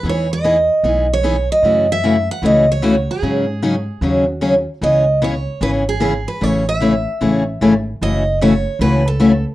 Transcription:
0.03 E2 E3 B3 D#4 G#4
0.09 C#5
0.33 D#5
0.44 E3 B3 D#4 G#4
0.83 B1 E3 B3 D#4 G#4
1.13 C#5
1.23 E3 B3 D#4 G#4
1.52 D#5
1.62 F#2 C#3 E3 A3 C#4 F#4
1.92 E5
2.04 C#3 E3 A3 C#4 F#4
2.31 F#5
2.42 C#2 C#3 E3 A3 C#4 F#4 D#5
2.72 C#5
2.82 C#3 E3 A3 C#4 F#4
3.11 G#4
3.22 G#2 C#3 F#3 C#4 D#4 G#4
3.62 C#3 F#3 C#4 D#4 G#4
4.01 D#2 C#3 F#3 C#4 D#4 G#4
4.13 F#4
4.41 C#3 F#3 C#4 D#4 G#4
4.81 C#2 C#3 E3 B3 C#4 G#4 D#5
5.22 C#3 E3 B3 C#4 G#4 C#5
5.61 G#1 C#3 E3 B3 C#4 G#4 B4
5.89 G#4
6.00 C#3 E3 B3 C#4 G#4
6.28 B4
6.41 A1 C#3 E3 A3 C#4 G#4 C#5
6.69 E5
6.80 C#3 E3 A3 C#4 G#4
7.21 A1 C#3 E3 A3 C#4 G#4
7.61 G#1 C#3 E3 A3 C#4 G#4
8.01 F#1 C#3 E3 A3 C#4 F#4 D#5
8.41 C#3 E3 A3 C#4 F#4 C#5
8.79 C#2 C#3 E3 A3 C#4 F#4 B4
9.08 A4
9.20 C#3 E3 A3 C#4 F#4

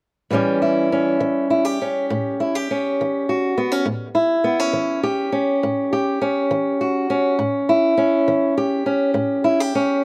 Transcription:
0.30 A2 E3 G3 C#4 G4
0.62 E4
0.92 C#4
1.20 E3
1.50 E4
1.65 G4
1.82 C#4
2.10 A2
2.40 E4
2.55 G4
2.71 C#4
3.01 E3
3.29 F#4
3.58 B3
3.72 C#4
3.85 A2
4.15 E4
4.44 B3
4.59 C#4
4.73 E3
5.03 G4
5.32 C#4
5.63 A2
5.93 G4
6.21 C#4
6.51 E3
6.81 F#4
7.10 C#4
7.39 A2
7.69 E4
7.97 C#4
8.28 E3
8.58 G4
8.86 C#4
9.14 A2
9.44 E4
9.60 G4
9.75 C#4

